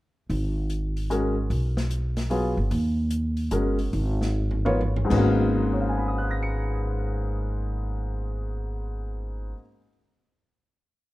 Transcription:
0.30 1.46 G#1 medium
0.30 open hi-hat soft
0.70 closed hi-hat soft
0.97 open hi-hat soft
1.10 1.34 G#3 medium
1.10 1.34 C#4 soft
1.10 1.34 F#4 soft
1.10 1.34 A#4 medium
1.10 closed hi-hat soft
1.50 2.53 B1 medium
1.50 open hi-hat soft
1.77 snare medium
1.91 closed hi-hat soft
2.17 snare soft
2.17 open hi-hat soft
2.30 2.54 F#3 medium
2.30 2.54 B3 medium
2.30 2.54 F4 soft
2.30 2.54 G#4 medium
2.30 open hi-hat soft
2.57 2.70 G1 medium
2.71 3.48 D#2 medium
2.71 open hi-hat soft
3.11 closed hi-hat medium
3.37 open hi-hat soft
3.51 3.90 G1 medium
3.51 3.76 G#3 medium
3.51 3.76 C#4 soft
3.51 3.76 F#4 soft
3.51 3.76 A#4 medium
3.51 closed hi-hat soft
3.79 open hi-hat soft
3.93 5.06 G#1 medium
3.93 open hi-hat soft
4.21 snare soft
4.51 floor tom soft
4.65 4.79 B3 medium
4.65 4.79 F4 medium
4.65 4.79 A#4 medium
4.65 4.79 C#5 medium
4.65 floor tom medium
4.81 floor tom medium
4.96 floor tom medium
5.05 9.50 G#2 medium
5.05 9.53 G#3 medium
5.10 9.52 G#1 medium
5.10 9.55 B3 medium
5.10 9.57 C#4 medium
5.10 kick soft
5.10 crash medium
5.14 9.62 A#3 medium
5.14 9.60 F#4 medium
5.73 9.55 C#5 soft
5.80 9.58 F5 soft
5.89 9.63 G#5 soft
5.98 9.67 B5 soft
6.08 9.72 D#6 soft
6.18 9.77 F#6 soft
6.31 9.84 A#6 soft
6.43 9.90 C#7 soft

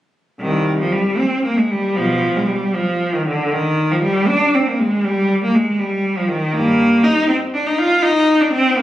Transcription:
0.40 0.77 C2 medium
0.40 0.77 D#3 medium
0.80 0.93 F3 medium
0.92 1.19 G3 medium
1.18 1.44 C4 medium
1.44 1.57 A#3 medium
1.58 1.71 G#3 medium
1.71 1.97 G3 medium
1.96 2.32 B2 medium
1.96 2.35 F3 medium
2.37 2.49 G#3 medium
2.47 2.73 G3 medium
2.74 3.13 F3 medium
3.14 3.26 D#3 medium
3.26 3.51 D3 medium
3.52 3.90 D#3 medium
3.92 4.03 F3 medium
4.02 4.27 G3 medium
4.28 4.53 D4 medium
4.55 4.67 C4 medium
4.69 4.80 A#3 medium
4.80 5.04 G#3 medium
5.04 5.42 G3 medium
5.44 5.55 A#3 medium
5.55 5.79 G#3 medium
5.79 6.16 G3 medium
6.17 6.29 F3 medium
6.29 6.53 D#3 medium
6.53 7.00 G2 medium
6.53 7.03 A#3 loud
7.04 7.28 D#4 medium
7.28 7.36 C4 medium
7.54 7.66 D4 medium
7.67 7.78 D#4 medium
7.78 8.02 F4 loud
8.03 8.39 D#4 loud
8.41 8.52 D4 medium
8.53 8.76 C4 loud
8.78 8.82 A#3 medium

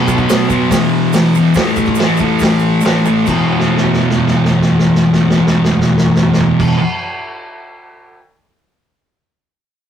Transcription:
0.00 0.28 B2 loud
0.00 0.30 F#3 medium
0.00 0.32 B3 loud
0.08 kick medium
0.08 shaker medium
0.17 kick medium
0.17 shaker soft
0.29 0.70 B2 medium
0.29 0.52 F#3 medium
0.29 0.47 B3 medium
0.29 snare loud
0.29 open hi-hat medium
0.29 shaker loud
0.49 0.70 B3 medium
0.49 kick medium
0.49 shaker medium
0.53 0.72 F#3 medium
0.70 1.11 E2 loud
0.70 1.14 B2 loud
0.70 kick loud
0.70 snare loud
0.70 open hi-hat medium
0.70 shaker loud
0.74 1.17 E3 loud
1.13 1.55 E2 medium
1.13 1.37 B2 loud
1.13 snare loud
1.13 open hi-hat medium
1.13 shaker loud
1.17 1.35 E3 loud
1.35 1.55 B2 medium
1.35 1.57 E3 medium
1.35 shaker medium
1.54 1.97 A2 medium
1.54 2.00 E3 medium
1.54 kick loud
1.54 snare loud
1.54 open hi-hat medium
1.54 shaker medium
1.58 2.01 A3 loud
1.76 kick medium
1.76 shaker medium
1.86 kick medium
1.86 shaker soft
1.95 2.41 A2 medium
1.95 shaker loud
1.99 2.23 E3 medium
1.99 2.19 A3 medium
1.99 snare loud
1.99 open hi-hat medium
2.17 2.86 A3 medium
2.17 kick medium
2.17 shaker medium
2.24 2.84 E3 medium
2.39 kick loud
2.39 snare loud
2.39 open hi-hat medium
2.39 shaker medium
2.59 shaker medium
2.81 3.25 A2 medium
2.81 shaker loud
2.85 3.08 E3 medium
2.85 3.04 A3 loud
2.85 snare loud
2.85 open hi-hat soft
3.05 3.26 A3 medium
3.05 shaker medium
3.09 3.28 E3 medium
3.26 6.76 E2 medium
3.26 6.79 B2 medium
3.26 kick loud
3.26 crash medium
3.26 shaker medium
3.30 6.80 E3 loud
3.49 floor tom soft
3.60 snare soft
3.67 floor tom soft
3.77 snare soft
3.84 floor tom medium
3.93 snare soft
4.01 floor tom soft
4.10 snare medium
4.18 floor tom medium
4.27 snare medium
4.35 floor tom medium
4.45 snare medium
4.51 floor tom medium
4.62 snare medium
4.69 floor tom medium
4.79 snare medium
4.87 floor tom medium
4.95 snare medium
5.03 floor tom medium
5.13 snare medium
5.20 floor tom medium
5.30 snare medium
5.38 floor tom medium
5.47 snare medium
5.55 floor tom medium
5.64 snare medium
5.71 floor tom medium
5.81 snare medium
5.89 floor tom medium
5.98 snare medium
6.06 floor tom medium
6.15 snare medium
6.23 floor tom medium
6.33 snare medium
6.40 floor tom medium
6.60 kick loud
6.60 crash loud

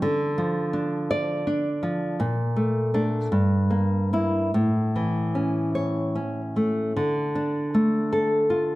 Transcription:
0.02 2.16 D3 medium
0.38 1.46 F3 medium
0.73 1.46 D4 soft
1.11 1.69 D5 medium
1.47 2.20 D4 soft
1.83 2.20 F3 soft
2.20 3.28 A#2 medium
2.56 2.93 A3 soft
2.94 3.28 A3 soft
2.94 3.28 D4 medium
3.32 4.50 G2 medium
3.71 4.12 A#3 soft
4.13 4.50 A#3 soft
4.13 4.50 E4 medium
4.54 6.93 A2 medium
4.96 6.17 E3 soft
5.35 6.14 C#4 soft
5.75 6.41 C#5 medium
6.15 6.96 C#4 soft
6.56 6.96 A3 soft
6.96 8.75 D3 medium
7.35 8.50 D4 soft
7.74 8.75 A3 soft
8.13 8.72 A4 medium
8.50 8.75 F4 soft

